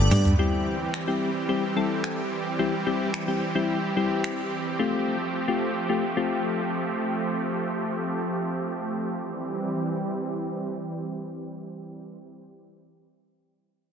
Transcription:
Already playing: D3 A3 B3 D4 G4 A4 D5
0.11 G2 G3, mid tom, open hi-hat
0.25 floor tom, shaker
0.39 E3 G3 C4 E4 G4
0.94 finger snap
1.07 G3 C4 E4 G4
1.49 G3 C4 E4 G4
1.76 G3 C4 E4 A4
2.04 finger snap
2.59 G3 C4 E4 G4
2.86 G3 C4 E4 G4
3.14 finger snap
3.28 G3 C4 E4 G4
3.55 G3 C4 E4 G4
3.96 G3 C4 E4 G4
4.24 finger snap
4.79 F3 A3 C4 F4 G4
5.48 A3 C4 F4 G4
5.89 A3 C4 F4 G4
6.17 A3 C4 F4 G4
9.20 E3 G3 C4 G4

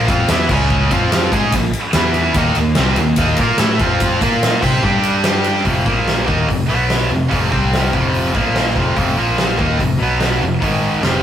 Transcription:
0.08 F2 F3 C4 F4, kick, ride
0.28 E2 E3 B3 E4, snare, ride
0.49 C#2 C#3 G#3 C#4, kick, crash
0.61 snare
0.70 kick
0.90 F2 F3 C4 F4, kick, ride
1.12 snare, ride
1.31 G#2 G#3 D#4 G#4, kick, ride
1.51 A#1 A#2 F3, kick, ride
1.73 ride
1.93 E2 E3 B3 E4, snare, ride
2.14 ride
2.34 D#2 D#3 A#3 D#4, kick, ride
2.55 D#2 D#3 A#3, ride
2.75 C2 C3 G3 C4, snare, ride
2.96 D#2 D#3 A#3, ride
3.16 D#2 D#3 A#3 D#4, kick, ride
3.37 A#2 A#3 F4 A#4, kick, ride
3.58 A2 A3 E4 A4, snare, ride
3.79 F2 F3 C4 F4, kick, ride
4.00 kick, ride
4.20 A#2 A#3 F4 A#4, kick, ride
4.43 snare, ride
4.62 C3 C4 G4 C5, kick, crash
4.83 G2 G3 D4 G4, kick
5.03 ride
5.24 snare, ride
5.44 ride
5.55 snare
5.65 F1 F2 C3 F3, kick, open hi-hat
5.86 A#1 A#2 F3 A#3, kick
6.08 snare, open hi-hat
6.28 D#2 D#3 A#3 D#4, kick
6.48 F1 F2 C3, kick, open hi-hat
6.68 B1 B2 F#3 B3
6.90 snare, open hi-hat
7.10 F1 F2 C3
7.30 F1 F2 C3 F3, kick, open hi-hat
7.52 C2 C3 G3 C4, kick
7.73 snare, open hi-hat
7.93 F1 F2 C3 F3, kick
8.14 open hi-hat
8.34 A#1 A#2 F3 A#3, kick
8.56 snare, open hi-hat
8.75 F1 F2 C3 F3, kick
8.96 F1 F2 C3 F3, kick, open hi-hat
9.16 A#1 A#2 F3 A#3
9.38 snare, open hi-hat
9.57 D#2 D#3 A#3 D#4, kick
9.79 F1 F2 C3, kick, open hi-hat
9.98 B1 B2 F#3 B3
10.02 B2
10.20 snare, open hi-hat
10.40 F1 F2 C3
10.60 G#1 G#2 D#3 G#3, kick, open hi-hat
11.03 F1 F2 C3 F3, snare, open hi-hat

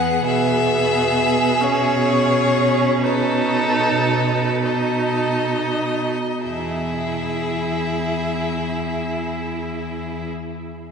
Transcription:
Already playing: E2 B3 G#4 F#5
0.25 B2 B3 G#4 E5
1.61 C#4 C#5
3.04 D#4 A4 B4
4.65 D#4 A4 D#5
6.45 E2 E4 G#4 E5

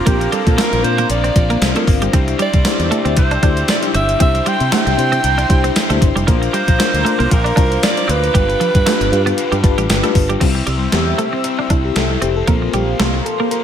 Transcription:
Already playing: C4 D4 F4 A#4 C5 F5 A#5 D6
0.05 A#1 A#2 F3 A#3 C4 D4 F4 G4 A#4, kick, closed hi-hat
0.21 muted clean electric guitar stroke, closed hi-hat
0.32 F3 G3 A#3 A4, closed hi-hat
0.47 A#2, kick, closed hi-hat
0.57 A3 C4 D4 F4 A#4, snare, closed hi-hat, tambourine
0.72 A#1, muted clean electric guitar stroke, closed hi-hat
0.83 A#2 C4 D4 F4 A#4 C5, closed hi-hat
0.98 A#3, closed hi-hat
1.08 A#1 A#2 F3 D5, closed hi-hat
1.15 A#3
1.24 C4, closed hi-hat
1.35 A#1 C4 D4 F4 C5, muted clean electric guitar stroke, kick, closed hi-hat
1.50 A#3, closed hi-hat
1.62 C2, snare, closed hi-hat, tambourine
1.74 A3 C4 D4 F4 A#4, closed hi-hat
1.87 G1, muted clean electric guitar stroke, kick, open hi-hat
2.02 G3, closed hi-hat
2.12 C2 C3 G3 C4 D4 E4 G4 C5 E5 G5, kick, closed hi-hat
2.28 muted clean electric guitar stroke, closed hi-hat
2.39 G3 C4 D5, closed hi-hat
2.53 C2, kick, closed hi-hat
2.64 D4 E4 G4 C5, muted clean electric guitar stroke, snare, closed hi-hat, tambourine
2.79 E2, closed hi-hat
2.90 A3 D4 E4 G4 C5, closed hi-hat
3.05 D2 C4, closed hi-hat
3.16 C2 C3 G3 C5, muted clean electric guitar stroke, kick, closed hi-hat
3.22 C4
3.31 D4, closed hi-hat
3.42 D2 D4 E4 G4 D5, kick, closed hi-hat
3.57 closed hi-hat
3.68 D5, snare, closed hi-hat, tambourine
3.82 D4 E4 G4 C5, closed hi-hat
3.95 G1 C4 E5, closed hi-hat
4.09 closed hi-hat
4.20 C2 C3 G3 C4 D4 E4 G4 C5 E5 C6, kick, closed hi-hat
4.35 muted clean electric guitar stroke, closed hi-hat
4.45 G3 C4 G5, closed hi-hat
4.60 C3, closed hi-hat
4.72 A3 D4 E4 G4 C5 G5, snare, closed hi-hat, tambourine
4.86 C2, muted clean electric guitar stroke, closed hi-hat
4.98 C3 D4 E4 G4 C5, closed hi-hat
5.12 C4, closed hi-hat
5.22 C2 C3 G3, closed hi-hat
5.29 C4
5.38 D4, closed hi-hat
5.49 C2 D4 E4 G4 C5, muted clean electric guitar stroke, kick, closed hi-hat
5.64 C4, closed hi-hat
5.76 snare, closed hi-hat, tambourine
5.89 D2 A3 D4 E4 G4 C5, closed hi-hat
6.01 G1, muted clean electric guitar stroke, kick, closed hi-hat
6.16 F1 G3, closed hi-hat
6.27 A#1 A#2 F3 A#3 D4 F4 A#4 C5 F5 A#5 D6, kick, closed hi-hat
6.42 muted clean electric guitar stroke, closed hi-hat
6.53 F3 G3 A#3 C5, closed hi-hat
6.68 A#1, kick, closed hi-hat
6.79 D4 F4 A#4 C5, muted clean electric guitar stroke, snare, closed hi-hat, tambourine
6.94 D2, closed hi-hat
7.05 A3 D4 F4 A#4 C5, closed hi-hat
7.19 C2 A#3, closed hi-hat
7.29 A#1 A#2 A#4, muted clean electric guitar stroke, kick, closed hi-hat
7.33 F3 A#3
7.44 D4, closed hi-hat
7.56 C2 D4 F4 A#4 C5, kick, closed hi-hat
7.72 closed hi-hat
7.83 D5, snare, closed hi-hat, tambourine
7.96 D4 F4 A#4 C5, closed hi-hat
8.08 D2 C4 B4, closed hi-hat
8.24 closed hi-hat
8.34 G1 G2 D3 G3 D4 F4 G4 B4 G5, kick, closed hi-hat
8.49 muted clean electric guitar stroke, closed hi-hat
8.60 D3 F3 G3, closed hi-hat
8.75 G2, kick, closed hi-hat
8.86 A3 D4 F4 G4 B4, snare, closed hi-hat, tambourine
9.00 G1, muted clean electric guitar stroke, closed hi-hat
9.12 G2 D4 F4 G4 B4, closed hi-hat
9.26 B3, closed hi-hat
9.36 G2 D3, closed hi-hat
9.43 G3
9.52 G2 G3, closed hi-hat
9.63 G1 D4 F4 G4 B4 A5, muted clean electric guitar stroke, kick, closed hi-hat
9.78 A1 G3, closed hi-hat
9.89 G1 G5, snare, closed hi-hat, tambourine
10.03 A3 D4 F4 G4 B4, closed hi-hat
10.15 G1, muted clean electric guitar stroke, kick, open hi-hat
10.29 G3, closed hi-hat
10.40 C2 C3 G3 C4 E4 C5 E5 G5 E6, kick, closed hi-hat, crash
10.45 C4
10.55 muted clean electric guitar stroke
10.67 C2 G3, closed hi-hat
10.92 E2 G4, muted clean electric guitar stroke, snare, closed hi-hat
11.18 A3, closed hi-hat
11.33 C4
11.44 C3 G3 C4, muted clean electric guitar stroke, closed hi-hat
11.59 D4
11.70 C2 D4 E4, kick, closed hi-hat
11.85 G4
11.96 C2 C3 G3 C4 A4, snare, closed hi-hat
12.22 F1 C4 G4, closed hi-hat
12.37 A4
12.47 A#1 A#2 F3 A#3 C4 F4 C5 F5 C6, kick, closed hi-hat
12.52 A#3
12.62 muted clean electric guitar stroke
12.73 A#1 G3 G4, closed hi-hat
13.00 C2 A3, snare, closed hi-hat
13.14 muted clean electric guitar stroke
13.25 A4, closed hi-hat
13.40 A#3
13.50 A#2 F3 A#3 A#4, closed hi-hat

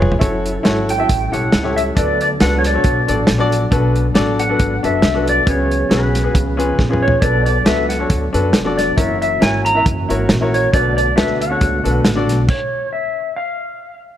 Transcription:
Already playing: F1 F4 G#4 B4 C#5 G#5
0.02 mid tom
0.12 floor tom
0.19 F#1 F#3 C#4 E4 F#4 A4 C#5, kick, closed hi-hat
0.46 closed hi-hat
0.63 G#1 E4 F#4 A4 C#5, snare, closed hi-hat
0.89 G5, closed hi-hat
0.98 E4 F#4 A4 E5
1.08 A1 A2 G3, kick, closed hi-hat
1.32 B1 E4 G4 A4 C#5 F#5, closed hi-hat
1.52 C#2, snare, closed hi-hat
1.64 E4 G4 A4 C#5
1.76 E5, closed hi-hat
1.95 D2 D3 F#3 B3 D4 F#4 A4 B4 D5, kick, closed hi-hat
2.21 D5, closed hi-hat
2.40 C#2 D4 F#4 A4 B4 F#5, snare, closed hi-hat
2.59 C#5
2.64 D5, snare, closed hi-hat
2.74 D4 F#4 A4 C#5
2.84 B1, kick, closed hi-hat
3.07 A1 D4 F#4 A4 D5, closed hi-hat
3.27 A#1, snare, closed hi-hat
3.38 D4 F#4 A4 D5
3.52 closed hi-hat
3.71 B1 B2 D4 F#4 A4 B4, kick, closed hi-hat
3.96 closed hi-hat
4.14 A1 D4 F#4 A4 D5, snare, closed hi-hat
4.39 F#5, closed hi-hat
4.49 D4 F#4 A4 B4
4.59 G#1, kick, closed hi-hat
4.83 F#1 D4 F#4 A4 B4 E5, closed hi-hat
5.02 C2, snare, closed hi-hat
5.14 D4 F#4 A4 B4
5.28 D5, closed hi-hat
5.46 C#2 C#3 C#4 F#4 G#4 B4 C#5, kick, closed hi-hat
5.71 closed hi-hat
5.89 B1 C#4 F#4 G#4 B4, snare, closed hi-hat
6.15 snare, closed hi-hat
6.23 C#4 F#4 G#4 B4
6.34 C#2 C#3 F3, kick, closed hi-hat
6.57 C#4 F4 G#4 B4, closed hi-hat
6.79 A#1, kick, snare
6.89 C#4 F4 G#4 B4
6.93 mid tom
7.03 C#5
7.08 floor tom
7.21 B1 B2 F#3 B3 D4 F#4 A4 B4 D5, kick, closed hi-hat
7.46 D5, closed hi-hat
7.65 C#2 D4 F#4 A4 B4 E5, snare, closed hi-hat
7.89 F#5, snare, closed hi-hat
7.99 D4 F#4 A4 C#5
8.10 D2, kick, closed hi-hat
8.33 F#2 D4 F#4 A4 B4, closed hi-hat
8.53 F1, snare, closed hi-hat
8.64 D4 F#4 A4 D5
8.77 D5, snare, closed hi-hat
8.96 F#1 E3 A#3 C#4 E4 F#4 A#4 C#5 E5, kick, closed hi-hat
9.22 E5, closed hi-hat
9.40 G#1 E4 F#4 A#4 C#5 G#5, snare, closed hi-hat
9.65 A#5, closed hi-hat
9.75 E4 F#4 A#4 E5
9.86 F#1, kick, closed hi-hat
10.09 G#1 E4 F#4 A#4 C#5, closed hi-hat
10.29 A#1, snare, closed hi-hat
10.41 E4 F#4 A#4 C#5
10.54 C#5, closed hi-hat
10.72 B1 B2 D3 A3 B3 D4 F#4 A4 B4 D5, kick, closed hi-hat
10.97 D5, closed hi-hat
11.16 D2 D4 F#4 A4 B4 E5, snare, closed hi-hat
11.41 F#5, closed hi-hat
11.50 D4 F#4 A4 C#5
11.61 C#2, kick, closed hi-hat
11.84 B1 D4 F#4 A4 B4, closed hi-hat
12.05 A1, snare, closed hi-hat
12.16 D4 F#4 A4 D5
12.29 B1, snare, closed hi-hat
12.48 C#5, kick, crash
12.93 E5
13.36 F5

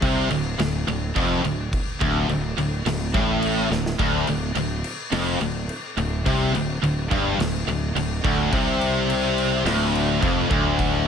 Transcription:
0.02 C2 C3, kick, crash
0.30 D1 D2, crash
0.59 D1 D2, snare, crash
0.88 D1 D2, crash
1.16 F1 F2, kick, crash
1.44 D1 D2, crash
1.73 kick, crash
2.01 D1 D2, kick, crash
2.29 D1 D2, crash
2.57 D1 D2, crash
2.85 D1 D2, snare, crash
3.14 A1 A2, kick, crash
3.42 crash
3.71 D1 D2, snare
3.86 snare
3.99 D1 D2, kick, crash
4.27 D1 D2, crash
4.55 D1 D2, crash
4.84 crash
5.12 F1 F2, snare, crash
5.41 D1 D2, crash
5.69 crash
5.97 D1 D2, crash
6.26 C2 C3, kick, crash
6.54 D1 D2, crash
6.83 D1 D2, crash
7.11 G1 G2, kick, crash
7.39 D1 D2, snare, crash
7.67 D1 D2, crash
7.95 D1 D2, crash
8.24 D1 D2, kick, crash
8.53 C2 C3, kick, crash
8.81 crash
9.10 crash
9.38 crash
9.65 D1 D2, snare, crash
9.95 crash
10.23 F1 F2, kick, crash
10.51 D1 D2, kick, crash
10.79 kick, crash

